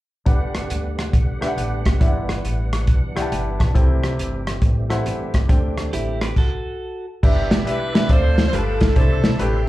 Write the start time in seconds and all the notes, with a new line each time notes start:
0.26 G1 G2 D3 G3 B3 D4 G4 B4 F#5, kick, closed hi-hat
0.55 cross-stick, closed hi-hat
0.70 D2, closed hi-hat
0.99 cross-stick, closed hi-hat
1.13 B1, kick, closed hi-hat
1.41 D4 G4 B4 E5, cross-stick, closed hi-hat
1.47 F#5
1.57 A1, closed hi-hat
1.85 F#1, kick, cross-stick, closed hi-hat
2.00 G1 G2 E3 D4 E4 G4 D5 E5, kick, closed hi-hat
2.07 F#5
2.29 cross-stick, closed hi-hat
2.45 A1, closed hi-hat
2.73 cross-stick, closed hi-hat
2.87 B1, kick, closed hi-hat
3.16 E4 G4 D5 F#5 G5, cross-stick, closed hi-hat
3.22 A5
3.31 G1 G5, closed hi-hat
3.59 B1 A5, kick, cross-stick, closed hi-hat
3.74 C2 C3 A3 C4 E4 G4 A4 C5 G5, kick, closed hi-hat
4.04 cross-stick, closed hi-hat
4.19 G1, closed hi-hat
4.47 cross-stick, closed hi-hat
4.62 A1, kick, closed hi-hat
4.90 E4 A4 C5 F#5, cross-stick, closed hi-hat
5.06 G1, closed hi-hat
5.34 kick, cross-stick, closed hi-hat
5.48 D2 D3 D4 A4 C5 G5, kick, closed hi-hat
5.78 cross-stick, closed hi-hat
5.93 A1 E4 G4, closed hi-hat
6.21 G4 B4, cross-stick, closed hi-hat
6.36 F#4 A4, kick, crash
7.23 G1 G2 B3 D4 E4 G4 B4 D5 E5 B5, kick, crash
7.51 A1, snare, closed hi-hat
7.66 B1 D4 E4 G4 B4 E5, closed hi-hat
7.94 D4 G4 B4 E5, snare, closed hi-hat
8.09 D2 D3 C4 F4 A4 C5 D5 F5 C6, kick, closed hi-hat
8.38 snare, closed hi-hat
8.47 C5
8.52 G1 G2 A3 D4 F4 G4 A4 B4 G5 B5, closed hi-hat
8.81 kick, snare, closed hi-hat
8.96 C2 C3 A3 D4 E4 A4 C5 D5 E5 C6, kick, closed hi-hat
9.24 B1, snare, closed hi-hat
9.38 A1 A3 D4 E4 G4 B4, closed hi-hat